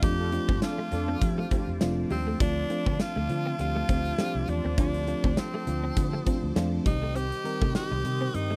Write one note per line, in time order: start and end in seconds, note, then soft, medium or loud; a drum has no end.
0.02 0.37 F2 loud
0.02 0.25 F3 medium
0.02 0.25 A3 medium
0.02 0.25 C4 medium
0.02 0.13 D4 medium
0.02 0.25 D4 medium
0.02 2.38 F4 medium
0.02 0.25 F4 loud
0.02 0.59 G4 loud
0.02 8.56 C5 medium
0.02 6.82 A5 medium
0.02 6.82 D6 medium
0.02 kick loud
0.02 closed hi-hat medium
0.19 0.30 D4 medium
0.19 0.30 F4 medium
0.19 0.30 A4 loud
0.32 0.55 F3 loud
0.32 0.55 A3 medium
0.32 0.55 C4 medium
0.32 0.55 D4 medium
0.32 0.55 F4 loud
0.32 muted clean electric guitar stroke soft
0.32 closed hi-hat medium
0.48 0.59 G2 medium
0.48 0.57 C4 medium
0.48 kick loud
0.62 0.84 F3 medium
0.62 0.85 A3 medium
0.62 0.85 C4 medium
0.62 0.76 D4 medium
0.62 0.85 D4 medium
0.62 0.76 F4 medium
0.62 0.85 F4 medium
0.62 1.77 F4 loud
0.62 0.76 A4 medium
0.62 snare loud
0.62 closed hi-hat medium
0.62 tambourine medium
0.78 0.87 A3 medium
0.91 1.14 F2 loud
0.91 1.14 F3 medium
0.91 1.14 A3 medium
0.91 1.14 C4 medium
0.91 1.17 D4 loud
0.91 1.15 D4 medium
0.91 1.17 F4 loud
0.91 1.15 F4 medium
0.91 1.17 A4 loud
0.91 muted clean electric guitar stroke soft
0.91 closed hi-hat medium
1.08 1.16 C4 medium
1.21 1.44 F3 medium
1.21 1.44 F3 loud
1.21 1.44 A3 medium
1.21 1.44 C4 medium
1.21 1.44 D4 medium
1.21 1.44 G4 medium
1.21 muted clean electric guitar stroke soft
1.21 kick loud
1.21 closed hi-hat medium
1.38 1.46 A3 medium
1.51 1.74 F3 medium
1.51 1.74 A3 medium
1.51 1.61 C4 medium
1.51 1.74 C4 medium
1.51 1.74 D4 medium
1.51 1.74 G4 medium
1.51 kick loud
1.51 closed hi-hat medium
1.68 1.78 F2 medium
1.81 2.03 F1 medium
1.81 2.03 F3 loud
1.81 2.03 A3 loud
1.81 2.04 C4 loud
1.81 2.04 D4 loud
1.81 2.04 F4 loud
1.81 muted clean electric guitar stroke soft
1.81 snare loud
1.81 closed hi-hat medium
1.81 tambourine medium
2.10 2.33 D#2 loud
2.10 2.33 F3 medium
2.10 2.21 G3 medium
2.10 2.33 A3 medium
2.10 2.33 C4 medium
2.10 2.39 C4 medium
2.10 2.33 D4 medium
2.10 2.34 F4 medium
2.10 open hi-hat medium
2.27 2.35 A3 medium
2.40 2.63 D2 loud
2.40 2.63 F3 medium
2.40 2.63 A3 medium
2.40 2.63 C4 medium
2.40 2.50 D4 medium
2.40 2.63 D4 medium
2.40 3.02 D4 loud
2.40 6.82 F4 medium
2.40 2.63 F4 loud
2.40 kick loud
2.40 closed hi-hat medium
2.70 2.92 F3 loud
2.70 2.92 A3 medium
2.70 2.93 C4 medium
2.70 2.93 D4 medium
2.70 2.93 F4 loud
2.70 muted clean electric guitar stroke soft
2.70 closed hi-hat medium
2.86 2.96 D3 loud
2.86 2.95 C4 medium
2.86 kick loud
2.99 3.22 F3 medium
2.99 3.22 A3 medium
2.99 3.22 C4 medium
2.99 3.23 D4 medium
2.99 3.23 F4 medium
2.99 3.60 F4 loud
2.99 snare loud
2.99 closed hi-hat medium
2.99 tambourine medium
3.16 3.26 D2 medium
3.16 3.24 A3 medium
3.29 3.52 D3 loud
3.29 3.52 F3 medium
3.29 3.52 A3 medium
3.29 3.52 C4 medium
3.29 3.52 D4 medium
3.29 3.52 F4 medium
3.29 muted clean electric guitar stroke soft
3.29 closed hi-hat medium
3.46 3.54 C4 medium
3.59 3.82 D2 medium
3.59 3.81 F3 medium
3.59 3.81 A3 medium
3.59 3.82 C4 medium
3.59 3.82 D4 medium
3.59 4.51 F4 loud
3.59 3.82 G4 medium
3.59 muted clean electric guitar stroke soft
3.59 closed hi-hat medium
3.76 3.84 A3 medium
3.88 4.11 D2 medium
3.88 4.11 F3 medium
3.88 4.11 A3 medium
3.88 4.11 C4 medium
3.88 3.99 C4 medium
3.88 4.11 D4 medium
3.88 4.12 G4 medium
3.88 kick loud
3.88 closed hi-hat medium
4.05 closed hi-hat medium
4.18 4.41 F3 loud
4.18 4.41 A3 medium
4.18 4.29 A3 medium
4.18 4.41 C4 medium
4.18 4.41 D4 loud
4.18 4.41 G4 loud
4.18 snare loud
4.18 closed hi-hat medium
4.18 tambourine medium
4.35 4.45 C2 loud
4.48 4.61 E2 medium
4.48 4.70 F3 medium
4.48 4.71 A3 medium
4.48 4.71 C4 medium
4.48 4.71 D4 medium
4.48 4.79 D4 loud
4.48 4.71 F4 medium
4.48 muted clean electric guitar stroke soft
4.48 closed hi-hat medium
4.65 4.75 D#2 loud
4.65 4.73 C4 medium
4.77 5.13 D2 loud
4.77 5.00 F3 loud
4.77 5.00 A3 medium
4.77 5.00 C4 medium
4.77 4.88 D4 medium
4.77 5.00 D4 medium
4.77 5.39 D4 loud
4.77 5.01 F4 loud
4.77 kick loud
4.77 closed hi-hat medium
4.94 closed hi-hat medium
5.07 5.30 F3 loud
5.07 5.30 A3 medium
5.07 5.30 C4 medium
5.07 5.30 D4 medium
5.07 5.30 F4 loud
5.07 muted clean electric guitar stroke soft
5.07 closed hi-hat medium
5.24 5.34 D2 loud
5.24 5.32 C4 medium
5.24 kick loud
5.37 5.60 F3 medium
5.37 5.60 A3 medium
5.37 5.60 C4 medium
5.37 6.57 C4 medium
5.37 5.60 D4 medium
5.37 5.60 F4 medium
5.37 snare loud
5.37 closed hi-hat medium
5.37 tambourine medium
5.54 5.62 A3 medium
5.66 5.89 D2 loud
5.66 5.89 F3 medium
5.66 5.89 A3 medium
5.66 5.89 C4 medium
5.66 5.90 D4 medium
5.66 5.90 F4 medium
5.66 muted clean electric guitar stroke soft
5.66 closed hi-hat medium
5.84 5.92 C4 medium
5.96 6.19 D3 loud
5.96 6.19 F3 medium
5.96 6.19 A3 medium
5.96 6.19 C4 medium
5.96 6.19 D4 medium
5.96 6.19 F4 medium
5.96 muted clean electric guitar stroke soft
5.96 kick loud
5.96 closed hi-hat medium
6.13 6.21 A3 medium
6.25 6.48 F3 medium
6.25 6.49 A3 medium
6.25 6.49 C4 medium
6.25 6.37 C4 medium
6.25 6.49 D4 medium
6.25 6.49 F4 loud
6.25 kick loud
6.25 closed hi-hat medium
6.43 6.53 D2 medium
6.55 6.78 F2 medium
6.55 6.78 F3 loud
6.55 6.78 A3 loud
6.55 6.79 C4 loud
6.55 6.79 D4 loud
6.55 6.79 F4 loud
6.55 muted clean electric guitar stroke soft
6.55 snare loud
6.55 closed hi-hat medium
6.55 tambourine medium
6.85 7.30 C2 loud
6.85 7.34 D#3 medium
6.85 8.56 D#3 medium
6.85 7.34 G3 medium
6.85 6.96 G3 medium
6.85 7.34 C4 medium
6.85 6.93 D4 medium
6.85 7.17 D#4 loud
6.85 7.35 G4 medium
6.85 8.56 G5 medium
6.85 8.56 D#6 medium
6.85 kick loud
6.85 closed hi-hat medium
6.92 7.38 D#4 medium
7.02 7.10 A3 medium
7.15 7.25 C4 loud
7.15 7.75 G4 loud
7.15 closed hi-hat medium
7.32 closed hi-hat medium
7.44 7.67 D#3 loud
7.44 7.67 G3 medium
7.44 7.68 C4 medium
7.44 7.68 D#4 medium
7.44 7.68 A#4 loud
7.44 muted clean electric guitar stroke soft
7.44 closed hi-hat medium
7.62 7.72 C3 loud
7.62 7.70 A3 medium
7.62 kick loud
7.74 7.97 D#3 medium
7.74 7.97 G3 medium
7.74 7.97 C4 medium
7.74 7.97 D#4 medium
7.74 7.97 G4 medium
7.74 8.36 G4 loud
7.74 snare loud
7.74 closed hi-hat medium
7.74 tambourine medium
7.91 8.01 C2 loud
7.91 8.00 G3 medium
8.03 8.27 C3 loud
8.03 8.26 D#3 medium
8.03 8.27 G3 medium
8.03 8.27 C4 medium
8.03 8.27 D#4 medium
8.03 8.27 G4 medium
8.03 muted clean electric guitar stroke soft
8.03 closed hi-hat medium
8.21 8.29 C4 medium
8.33 8.56 G2 loud
8.33 8.56 D#3 medium
8.33 8.56 G3 medium
8.33 8.56 C4 medium
8.33 8.56 D#4 medium
8.33 8.56 D#4 loud
8.33 8.56 G4 medium
8.33 muted clean electric guitar stroke soft
8.33 closed hi-hat medium
8.51 8.56 A3 medium